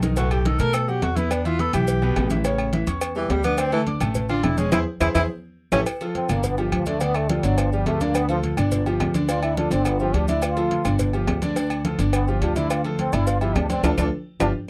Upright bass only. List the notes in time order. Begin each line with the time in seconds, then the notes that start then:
Already playing: B1
0.59 B2
1.02 E2
1.73 B1
2.16 A1
2.87 E2
3.29 D2
4.01 A1
4.43 E1
4.72 E2
5.01 E2
5.15 E2
5.72 A1
6.29 G1
6.72 D2
7.43 G1
7.86 D2
8.57 G1
9.00 D2
9.70 G1
10.13 D2
10.85 G1
11.27 D2
11.98 G1
12.41 D2
13.13 G1
13.55 D2
13.83 D2
13.98 D2
14.40 G1